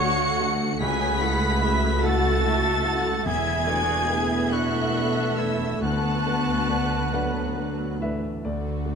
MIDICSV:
0, 0, Header, 1, 11, 480
1, 0, Start_track
1, 0, Key_signature, 3, "major"
1, 0, Tempo, 819672
1, 476, Time_signature, 6, 3, 24, 8
1, 2399, Tempo, 864553
1, 5094, End_track
2, 0, Start_track
2, 0, Title_t, "Violin section"
2, 0, Program_c, 0, 48
2, 0, Note_on_c, 0, 97, 127
2, 472, Note_on_c, 0, 95, 127
2, 475, Note_off_c, 0, 97, 0
2, 1178, Note_off_c, 0, 95, 0
2, 1189, Note_on_c, 0, 93, 127
2, 1909, Note_off_c, 0, 93, 0
2, 1916, Note_on_c, 0, 92, 127
2, 2622, Note_off_c, 0, 92, 0
2, 2635, Note_on_c, 0, 90, 106
2, 3109, Note_on_c, 0, 88, 88
2, 3112, Note_off_c, 0, 90, 0
2, 3355, Note_off_c, 0, 88, 0
2, 3355, Note_on_c, 0, 90, 106
2, 4549, Note_off_c, 0, 90, 0
2, 4811, Note_on_c, 0, 74, 61
2, 5094, Note_off_c, 0, 74, 0
2, 5094, End_track
3, 0, Start_track
3, 0, Title_t, "Flute section"
3, 0, Program_c, 1, 73
3, 0, Note_on_c, 1, 85, 118
3, 303, Note_off_c, 1, 85, 0
3, 474, Note_on_c, 1, 83, 117
3, 1179, Note_off_c, 1, 83, 0
3, 1188, Note_on_c, 1, 81, 117
3, 1909, Note_off_c, 1, 81, 0
3, 1909, Note_on_c, 1, 80, 126
3, 2618, Note_off_c, 1, 80, 0
3, 2635, Note_on_c, 1, 78, 87
3, 3112, Note_off_c, 1, 78, 0
3, 3112, Note_on_c, 1, 76, 71
3, 3345, Note_on_c, 1, 78, 93
3, 3356, Note_off_c, 1, 76, 0
3, 4543, Note_off_c, 1, 78, 0
3, 5094, End_track
4, 0, Start_track
4, 0, Title_t, "Violin section"
4, 0, Program_c, 2, 48
4, 0, Note_on_c, 2, 78, 101
4, 473, Note_off_c, 2, 78, 0
4, 476, Note_on_c, 2, 80, 105
4, 710, Note_off_c, 2, 80, 0
4, 710, Note_on_c, 2, 78, 93
4, 949, Note_on_c, 2, 76, 87
4, 952, Note_off_c, 2, 78, 0
4, 1191, Note_off_c, 2, 76, 0
4, 1193, Note_on_c, 2, 78, 96
4, 1431, Note_off_c, 2, 78, 0
4, 1431, Note_on_c, 2, 76, 84
4, 1671, Note_off_c, 2, 76, 0
4, 1674, Note_on_c, 2, 78, 90
4, 1912, Note_on_c, 2, 76, 103
4, 1913, Note_off_c, 2, 78, 0
4, 2150, Note_off_c, 2, 76, 0
4, 2158, Note_on_c, 2, 74, 86
4, 2401, Note_off_c, 2, 74, 0
4, 2401, Note_on_c, 2, 76, 93
4, 3356, Note_on_c, 2, 81, 98
4, 3357, Note_off_c, 2, 76, 0
4, 4449, Note_off_c, 2, 81, 0
4, 4818, Note_on_c, 2, 66, 74
4, 5094, Note_off_c, 2, 66, 0
4, 5094, End_track
5, 0, Start_track
5, 0, Title_t, "Oboe"
5, 0, Program_c, 3, 68
5, 0, Note_on_c, 3, 73, 119
5, 316, Note_off_c, 3, 73, 0
5, 479, Note_on_c, 3, 71, 99
5, 1204, Note_on_c, 3, 69, 109
5, 1212, Note_off_c, 3, 71, 0
5, 1908, Note_off_c, 3, 69, 0
5, 1912, Note_on_c, 3, 68, 104
5, 2638, Note_on_c, 3, 66, 81
5, 2646, Note_off_c, 3, 68, 0
5, 3115, Note_on_c, 3, 64, 74
5, 3123, Note_off_c, 3, 66, 0
5, 3352, Note_off_c, 3, 64, 0
5, 3355, Note_on_c, 3, 66, 85
5, 4548, Note_off_c, 3, 66, 0
5, 5094, End_track
6, 0, Start_track
6, 0, Title_t, "Harp"
6, 0, Program_c, 4, 46
6, 0, Note_on_c, 4, 50, 95
6, 0, Note_on_c, 4, 57, 60
6, 0, Note_on_c, 4, 62, 59
6, 0, Note_on_c, 4, 66, 74
6, 0, Note_on_c, 4, 69, 69
6, 0, Note_on_c, 4, 78, 75
6, 224, Note_off_c, 4, 66, 0
6, 231, Note_on_c, 4, 66, 69
6, 258, Note_off_c, 4, 69, 0
6, 346, Note_off_c, 4, 62, 0
6, 353, Note_on_c, 4, 62, 62
6, 469, Note_on_c, 4, 49, 89
6, 491, Note_off_c, 4, 50, 0
6, 493, Note_off_c, 4, 62, 0
6, 590, Note_on_c, 4, 61, 65
6, 709, Note_on_c, 4, 64, 67
6, 823, Note_off_c, 4, 66, 0
6, 830, Note_on_c, 4, 66, 74
6, 1068, Note_on_c, 4, 76, 73
6, 1182, Note_off_c, 4, 78, 0
6, 1189, Note_on_c, 4, 78, 76
6, 1297, Note_off_c, 4, 76, 0
6, 1304, Note_on_c, 4, 76, 67
6, 1444, Note_off_c, 4, 57, 0
6, 1537, Note_off_c, 4, 66, 0
6, 1544, Note_on_c, 4, 66, 65
6, 1656, Note_off_c, 4, 64, 0
6, 1663, Note_on_c, 4, 64, 66
6, 1787, Note_on_c, 4, 57, 70
6, 1912, Note_on_c, 4, 52, 79
6, 1927, Note_off_c, 4, 66, 0
6, 1928, Note_off_c, 4, 49, 0
6, 1928, Note_off_c, 4, 61, 0
6, 1928, Note_off_c, 4, 78, 0
6, 2020, Note_off_c, 4, 57, 0
6, 2027, Note_on_c, 4, 57, 58
6, 2150, Note_on_c, 4, 71, 67
6, 2397, Note_on_c, 4, 74, 72
6, 2516, Note_on_c, 4, 83, 64
6, 2627, Note_on_c, 4, 81, 62
6, 2750, Note_off_c, 4, 83, 0
6, 2756, Note_on_c, 4, 83, 56
6, 2869, Note_off_c, 4, 74, 0
6, 2876, Note_on_c, 4, 74, 61
6, 2992, Note_on_c, 4, 69, 61
6, 3103, Note_off_c, 4, 71, 0
6, 3110, Note_on_c, 4, 71, 61
6, 3234, Note_on_c, 4, 62, 60
6, 3353, Note_on_c, 4, 50, 82
6, 3372, Note_off_c, 4, 64, 0
6, 3372, Note_off_c, 4, 76, 0
6, 3376, Note_off_c, 4, 52, 0
6, 3471, Note_off_c, 4, 57, 0
6, 3477, Note_on_c, 4, 57, 54
6, 3590, Note_off_c, 4, 71, 0
6, 3596, Note_on_c, 4, 71, 60
6, 3716, Note_off_c, 4, 69, 0
6, 3723, Note_on_c, 4, 69, 66
6, 3836, Note_off_c, 4, 74, 0
6, 3843, Note_on_c, 4, 74, 60
6, 3953, Note_off_c, 4, 83, 0
6, 3959, Note_on_c, 4, 83, 60
6, 4197, Note_off_c, 4, 83, 0
6, 4204, Note_on_c, 4, 83, 58
6, 4320, Note_off_c, 4, 74, 0
6, 4327, Note_on_c, 4, 74, 57
6, 4438, Note_off_c, 4, 69, 0
6, 4445, Note_on_c, 4, 69, 59
6, 4567, Note_off_c, 4, 71, 0
6, 4573, Note_on_c, 4, 71, 59
6, 4690, Note_off_c, 4, 62, 0
6, 4697, Note_on_c, 4, 62, 57
6, 4793, Note_off_c, 4, 81, 0
6, 4807, Note_off_c, 4, 50, 0
6, 4814, Note_on_c, 4, 50, 64
6, 4827, Note_off_c, 4, 83, 0
6, 4829, Note_off_c, 4, 71, 0
6, 4921, Note_off_c, 4, 62, 0
6, 4928, Note_on_c, 4, 62, 44
6, 5048, Note_on_c, 4, 66, 51
6, 5094, Note_off_c, 4, 50, 0
6, 5094, Note_off_c, 4, 57, 0
6, 5094, Note_off_c, 4, 62, 0
6, 5094, Note_off_c, 4, 66, 0
6, 5094, Note_off_c, 4, 69, 0
6, 5094, Note_off_c, 4, 74, 0
6, 5094, End_track
7, 0, Start_track
7, 0, Title_t, "Viola section"
7, 0, Program_c, 5, 48
7, 0, Note_on_c, 5, 57, 87
7, 0, Note_on_c, 5, 66, 96
7, 473, Note_on_c, 5, 68, 87
7, 475, Note_off_c, 5, 66, 0
7, 475, Note_on_c, 5, 54, 89
7, 476, Note_off_c, 5, 57, 0
7, 713, Note_on_c, 5, 57, 90
7, 715, Note_off_c, 5, 54, 0
7, 946, Note_off_c, 5, 57, 0
7, 953, Note_on_c, 5, 57, 92
7, 1178, Note_off_c, 5, 68, 0
7, 1194, Note_on_c, 5, 66, 88
7, 1911, Note_off_c, 5, 57, 0
7, 1912, Note_off_c, 5, 66, 0
7, 1913, Note_on_c, 5, 64, 78
7, 1914, Note_on_c, 5, 59, 89
7, 2149, Note_on_c, 5, 66, 92
7, 2150, Note_off_c, 5, 64, 0
7, 2394, Note_on_c, 5, 68, 83
7, 2396, Note_off_c, 5, 66, 0
7, 2626, Note_off_c, 5, 68, 0
7, 2628, Note_on_c, 5, 69, 82
7, 3335, Note_off_c, 5, 59, 0
7, 3353, Note_off_c, 5, 69, 0
7, 3356, Note_on_c, 5, 59, 78
7, 3357, Note_on_c, 5, 71, 76
7, 4674, Note_off_c, 5, 59, 0
7, 4697, Note_off_c, 5, 71, 0
7, 4815, Note_on_c, 5, 57, 73
7, 5094, Note_off_c, 5, 57, 0
7, 5094, End_track
8, 0, Start_track
8, 0, Title_t, "Grand piano"
8, 0, Program_c, 6, 0
8, 0, Control_c, 6, 64, 127
8, 0, Note_on_c, 6, 38, 84
8, 0, Note_on_c, 6, 57, 55
8, 0, Note_on_c, 6, 62, 60
8, 0, Note_on_c, 6, 66, 73
8, 1, Note_off_c, 6, 66, 0
8, 1, Note_on_c, 6, 66, 63
8, 211, Note_off_c, 6, 57, 0
8, 213, Note_off_c, 6, 62, 0
8, 214, Note_off_c, 6, 66, 0
8, 233, Note_on_c, 6, 57, 60
8, 237, Note_on_c, 6, 62, 61
8, 241, Note_on_c, 6, 66, 72
8, 450, Note_off_c, 6, 57, 0
8, 452, Note_off_c, 6, 62, 0
8, 454, Note_off_c, 6, 66, 0
8, 469, Note_on_c, 6, 37, 79
8, 486, Control_c, 6, 64, 0
8, 488, Note_off_c, 6, 38, 0
8, 597, Control_c, 6, 64, 127
8, 705, Note_off_c, 6, 37, 0
8, 706, Note_on_c, 6, 57, 69
8, 708, Note_on_c, 6, 64, 57
8, 711, Note_on_c, 6, 66, 63
8, 927, Note_off_c, 6, 57, 0
8, 928, Note_off_c, 6, 64, 0
8, 929, Note_off_c, 6, 66, 0
8, 951, Note_on_c, 6, 57, 56
8, 952, Note_on_c, 6, 64, 52
8, 956, Note_on_c, 6, 66, 56
8, 1168, Note_off_c, 6, 57, 0
8, 1169, Note_off_c, 6, 64, 0
8, 1171, Note_off_c, 6, 66, 0
8, 1193, Note_on_c, 6, 57, 70
8, 1194, Note_on_c, 6, 64, 67
8, 1196, Note_on_c, 6, 66, 74
8, 1408, Note_off_c, 6, 57, 0
8, 1408, Note_off_c, 6, 64, 0
8, 1410, Note_off_c, 6, 66, 0
8, 1429, Note_on_c, 6, 57, 49
8, 1430, Note_on_c, 6, 64, 58
8, 1434, Note_on_c, 6, 66, 54
8, 1646, Note_off_c, 6, 57, 0
8, 1646, Note_off_c, 6, 64, 0
8, 1649, Note_off_c, 6, 66, 0
8, 1665, Note_on_c, 6, 57, 61
8, 1666, Note_on_c, 6, 64, 55
8, 1669, Note_on_c, 6, 66, 67
8, 1885, Note_off_c, 6, 57, 0
8, 1885, Note_off_c, 6, 64, 0
8, 1887, Note_off_c, 6, 66, 0
8, 1907, Note_on_c, 6, 40, 81
8, 1922, Control_c, 6, 64, 0
8, 2012, Control_c, 6, 64, 127
8, 2145, Note_off_c, 6, 40, 0
8, 2149, Note_on_c, 6, 57, 59
8, 2152, Note_on_c, 6, 62, 61
8, 2154, Note_on_c, 6, 71, 60
8, 2373, Note_off_c, 6, 57, 0
8, 2375, Note_off_c, 6, 62, 0
8, 2376, Note_off_c, 6, 71, 0
8, 2394, Note_on_c, 6, 57, 55
8, 2394, Note_on_c, 6, 62, 53
8, 2397, Note_on_c, 6, 71, 58
8, 2609, Note_off_c, 6, 57, 0
8, 2609, Note_off_c, 6, 62, 0
8, 2611, Note_off_c, 6, 71, 0
8, 2624, Note_on_c, 6, 57, 54
8, 2626, Note_on_c, 6, 62, 61
8, 2628, Note_on_c, 6, 71, 64
8, 2843, Note_off_c, 6, 57, 0
8, 2844, Note_off_c, 6, 62, 0
8, 2845, Note_off_c, 6, 71, 0
8, 2865, Note_on_c, 6, 57, 48
8, 2867, Note_on_c, 6, 62, 49
8, 2868, Note_on_c, 6, 71, 58
8, 3087, Note_off_c, 6, 57, 0
8, 3088, Note_off_c, 6, 62, 0
8, 3088, Note_off_c, 6, 71, 0
8, 3105, Note_on_c, 6, 57, 52
8, 3107, Note_on_c, 6, 62, 49
8, 3110, Note_on_c, 6, 71, 62
8, 3330, Note_off_c, 6, 57, 0
8, 3331, Note_off_c, 6, 62, 0
8, 3333, Note_off_c, 6, 71, 0
8, 3349, Note_on_c, 6, 38, 71
8, 3367, Control_c, 6, 64, 0
8, 3469, Control_c, 6, 64, 127
8, 3589, Note_off_c, 6, 38, 0
8, 3600, Note_on_c, 6, 57, 53
8, 3602, Note_on_c, 6, 62, 52
8, 3603, Note_on_c, 6, 71, 59
8, 3820, Note_off_c, 6, 57, 0
8, 3821, Note_off_c, 6, 62, 0
8, 3822, Note_off_c, 6, 71, 0
8, 3836, Note_on_c, 6, 57, 45
8, 3841, Note_on_c, 6, 62, 47
8, 3842, Note_on_c, 6, 71, 51
8, 4059, Note_off_c, 6, 57, 0
8, 4062, Note_off_c, 6, 62, 0
8, 4062, Note_off_c, 6, 71, 0
8, 4083, Note_on_c, 6, 57, 60
8, 4085, Note_on_c, 6, 78, 85
8, 4088, Note_on_c, 6, 62, 58
8, 4088, Note_on_c, 6, 71, 64
8, 4304, Note_off_c, 6, 57, 0
8, 4307, Note_off_c, 6, 62, 0
8, 4307, Note_off_c, 6, 71, 0
8, 4328, Note_on_c, 6, 57, 51
8, 4332, Note_on_c, 6, 62, 45
8, 4333, Note_on_c, 6, 71, 53
8, 4549, Note_off_c, 6, 57, 0
8, 4549, Note_off_c, 6, 78, 0
8, 4551, Note_off_c, 6, 62, 0
8, 4552, Note_off_c, 6, 71, 0
8, 4575, Note_on_c, 6, 57, 56
8, 4575, Note_on_c, 6, 62, 52
8, 4576, Note_on_c, 6, 76, 79
8, 4580, Note_on_c, 6, 71, 57
8, 4789, Note_off_c, 6, 57, 0
8, 4789, Note_off_c, 6, 62, 0
8, 4791, Note_off_c, 6, 71, 0
8, 4795, Note_off_c, 6, 76, 0
8, 4814, Note_on_c, 6, 38, 58
8, 4814, Note_on_c, 6, 74, 75
8, 4819, Control_c, 6, 64, 0
8, 4926, Control_c, 6, 64, 127
8, 5037, Note_off_c, 6, 38, 0
8, 5039, Note_off_c, 6, 74, 0
8, 5041, Note_on_c, 6, 57, 43
8, 5043, Note_on_c, 6, 66, 47
8, 5047, Note_on_c, 6, 74, 47
8, 5094, Note_off_c, 6, 57, 0
8, 5094, Note_off_c, 6, 66, 0
8, 5094, Note_off_c, 6, 74, 0
8, 5094, End_track
9, 0, Start_track
9, 0, Title_t, "French horn section"
9, 0, Program_c, 7, 60
9, 0, Note_on_c, 7, 57, 91
9, 0, Note_on_c, 7, 66, 94
9, 454, Note_off_c, 7, 66, 0
9, 470, Note_on_c, 7, 66, 100
9, 1807, Note_off_c, 7, 57, 0
9, 1807, Note_off_c, 7, 66, 0
9, 1906, Note_on_c, 7, 57, 101
9, 1909, Note_on_c, 7, 64, 103
9, 3333, Note_off_c, 7, 64, 0
9, 3358, Note_on_c, 7, 59, 81
9, 4060, Note_off_c, 7, 57, 0
9, 4063, Note_off_c, 7, 59, 0
9, 4086, Note_on_c, 7, 54, 76
9, 4550, Note_off_c, 7, 54, 0
9, 4563, Note_on_c, 7, 52, 78
9, 4805, Note_off_c, 7, 52, 0
9, 4805, Note_on_c, 7, 50, 79
9, 5094, Note_off_c, 7, 50, 0
9, 5094, End_track
10, 0, Start_track
10, 0, Title_t, "Cello section"
10, 0, Program_c, 8, 48
10, 0, Note_on_c, 8, 38, 84
10, 476, Note_on_c, 8, 37, 83
10, 478, Note_off_c, 8, 38, 0
10, 1888, Note_off_c, 8, 37, 0
10, 1911, Note_on_c, 8, 40, 80
10, 3334, Note_off_c, 8, 40, 0
10, 3351, Note_on_c, 8, 38, 82
10, 4672, Note_off_c, 8, 38, 0
10, 4811, Note_on_c, 8, 38, 66
10, 5094, Note_off_c, 8, 38, 0
10, 5094, End_track
11, 0, Start_track
11, 0, Title_t, "Double bass section"
11, 0, Program_c, 10, 48
11, 0, Note_on_c, 10, 38, 84
11, 475, Note_on_c, 10, 37, 87
11, 477, Note_off_c, 10, 38, 0
11, 1888, Note_off_c, 10, 37, 0
11, 1912, Note_on_c, 10, 28, 86
11, 3334, Note_off_c, 10, 28, 0
11, 3353, Note_on_c, 10, 38, 78
11, 4673, Note_off_c, 10, 38, 0
11, 4814, Note_on_c, 10, 38, 65
11, 5094, Note_off_c, 10, 38, 0
11, 5094, End_track
0, 0, End_of_file